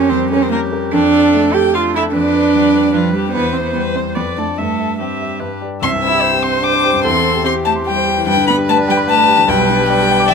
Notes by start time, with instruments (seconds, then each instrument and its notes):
Already playing: grand piano F2 A#4, cello C#4, viola G4, violin C#5
0.09 grand piano G3, cello C4, violin C5
0.30 cello C#4, grand piano A#4, violin C#5
0.42 cello C4, violin C5
0.50 cello A#3, grand piano C#4, viola G4, violin A#4
0.72 grand piano A#4
0.93 grand piano F2, cello D4, viola A4, violin D5
1.13 grand piano A4
1.34 grand piano A3
1.54 cello G4, grand piano A4, violin G5
1.74 grand piano D4, cello F4, viola A4, violin F5
1.95 cello E4, grand piano A4, violin E5
2.13 grand piano F2, cello D4, viola B4, violin D5
2.34 grand piano B4
2.55 grand piano G3
2.75 grand piano B4
2.94 cello F3, grand piano D4, violin F4, viola B4
3.13 cello G3, violin G4, grand piano B4
3.32 grand piano E2, cello B3, violin B4, viola C5
3.53 cello C4, grand piano C5
3.57 violin C5
3.62 cello B3
3.67 violin B4
3.72 grand piano G3, cello B3
3.78 violin B4
3.94 cello C4, grand piano C5, violin C5
4.15 grand piano F2, cello B3, violin B4, viola D5
4.37 cello A3, grand piano D4 D5, violin A4
4.57 grand piano G2, cello A3, violin A4, viola E5
4.79 grand piano E5
4.99 cello G3, grand piano C4, violin G4, viola E5
5.21 grand piano E5
5.40 grand piano G2, viola B4
5.61 grand piano G4 D5
5.82 grand piano C2, cello C4, viola E5, violin C6
5.92 grand piano G2
6.02 grand piano C4, cello E4, violin E6
6.13 grand piano G4
6.22 viola C5, grand piano C5
6.32 grand piano G4
6.42 cello C4, grand piano G5, violin C6
6.53 grand piano C6
6.63 cello D4, grand piano G5, violin D6
6.73 grand piano C5
6.84 grand piano G4
6.93 grand piano G2
7.04 grand piano E2, cello C4, viola A4, violin C6
7.14 grand piano E3
7.24 grand piano C4
7.34 grand piano G4
7.44 cello C4, viola G4, grand piano C5, violin C6
7.55 grand piano G4
7.65 cello A3, grand piano G5, violin A5
7.76 grand piano C6
7.86 cello G3, violin G5, grand piano G5
7.96 grand piano C5
8.07 grand piano G4
8.16 grand piano E3
8.27 grand piano G2, cello G3, viola B4, violin G5
8.36 grand piano D3
8.46 cello B3, grand piano D4, violin B5
8.56 grand piano G4
8.67 cello A3, grand piano B4, violin A5
8.78 grand piano D5
8.88 cello G3, grand piano G5, violin G5
8.97 grand piano B5
9.07 cello A3, grand piano G5, violin A5
9.18 grand piano D5
9.28 grand piano G4
9.37 grand piano D3
9.48 grand piano B1, cello G3, viola B4, violin G5
9.59 grand piano B2
9.69 grand piano D4
9.79 grand piano G4
9.89 cello G3, grand piano D5, violin G5
10.00 grand piano G4
10.11 grand piano G5
10.20 grand piano D6
10.28 cello E3, viola D5, violin E5, grand piano G5